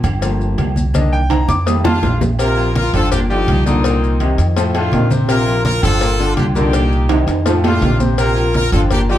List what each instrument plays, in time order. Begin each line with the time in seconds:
0.04 upright bass G1, cowbell, high conga, low conga, low agogo, maracas
0.21 grand piano F3 A3 A#3, cowbell, high conga, low agogo, maracas
0.40 high conga, maracas
0.58 upright bass C2, cowbell, high conga, low timbale, low agogo, maracas
0.76 high conga, maracas
0.94 grand piano D#3 A#3 D4 D#5, cowbell, high conga, low agogo, maracas
1.13 grand piano G5, maracas
1.30 grand piano A#5, cowbell, high conga, high timbale, low agogo, maracas
1.48 upright bass F2, grand piano D6, cowbell, high conga, maracas
1.66 grand piano D#3 G3 A3 D#6, cowbell, low timbale, low agogo, maracas
1.84 horn section D4 F4, grand piano A5, cowbell, high bongo, low conga, low timbale, low agogo, maracas
2.02 upright bass A#1, cowbell, high bongo, low conga, low timbale, maracas
2.21 low bongo, low conga, low timbale, maracas
2.39 trombone section C3, horn section F4 A#4, cowbell, high conga, low agogo, maracas
2.57 grand piano F3 F4 A#4, high conga, low agogo, maracas
2.75 horn section F4 A#4, cowbell, high conga, maracas
2.93 upright bass G1, grand piano D3 D4 F4, trombone section F3, horn section F4 A4, cowbell, high conga, low conga, low agogo, maracas
3.12 grand piano A#2 A#3 A#4, horn section D4 G4, cowbell, high conga, low conga, low agogo, maracas
3.30 trombone section D3, grand piano F3 F4 D5, horn section D#4 G4, high conga, maracas
3.47 upright bass C2, cowbell, high conga, low agogo, maracas
3.66 grand piano A#2 A#3 A#4, trombone section D3, horn section C4 D#4, high conga, maracas
3.84 grand piano A#2 A#3 A#4, cowbell, low agogo, maracas
4.03 high conga, maracas
4.20 trombone section C3, grand piano D#3 D#4 G4, cowbell, high conga, low agogo, maracas
4.38 upright bass F2, cowbell, maracas
4.56 grand piano A2 A3 A4, trombone section F3, cowbell, high conga, low agogo, maracas
4.74 grand piano A2 A3 A4, horn section D4 F4, cowbell, high conga, low agogo, maracas
4.92 upright bass A#1, grand piano C3 C4 D#4, trombone section D#3, cowbell, high conga, low timbale, maracas
5.10 grand piano C3 C4 C5, high conga, maracas
5.28 trombone section C3, horn section F4 A#4, cowbell, high conga, low agogo, maracas
5.46 grand piano F3 F4 A#4, high conga, low agogo, maracas
5.65 horn section F4 A#4, cowbell, high conga, maracas
5.83 upright bass G1, grand piano D3 D4 F4, trombone section F3, horn section F4 A4, cowbell, high conga, low conga, low agogo, maracas
6.01 grand piano A#2 A#3 A#4, cowbell, low agogo, maracas
6.19 grand piano D3 D4 F4, trombone section D3, high conga, maracas
6.37 upright bass C2, horn section D4 G4, cowbell, high conga, low agogo, maracas
6.55 grand piano A#2 A#3 A#4, trombone section D3, horn section D#4 G4, high conga, maracas
6.73 grand piano A#2 A#3 A#4, cowbell, low agogo, maracas
6.92 high conga, maracas
7.09 trombone section C3, grand piano D#3 D#4 G4, cowbell, high conga, high timbale, low agogo, maracas
7.27 upright bass F2, cowbell, high conga, high timbale, maracas
7.45 grand piano A2 A3 A4, trombone section F3, cowbell, high conga, high timbale, low agogo, maracas
7.64 grand piano A2 A3 A4, horn section D4 F4, cowbell, high conga, low timbale, low agogo, maracas
7.81 upright bass A#1, grand piano C3 C4 D#4, trombone section D#3, cowbell, high conga, low timbale, maracas
8.00 grand piano C3 C4 C5, high conga, low timbale, maracas
8.18 trombone section C3, horn section F4 A#4, cowbell, high conga, low agogo, maracas
8.36 grand piano F3 F4 A#4, high conga, low agogo, maracas
8.54 horn section F4 A#4, cowbell, high conga, maracas
8.72 upright bass G1, grand piano D3 D4 F4, trombone section F3, horn section F4 A4, cowbell, high conga, low conga, low agogo, maracas
8.91 grand piano A#2 A#3 A#4, horn section D4 G4, cowbell, high conga, low conga, low agogo, maracas
9.09 trombone section D3, grand piano F3 F4 D5, horn section D#4 G4, high conga, maracas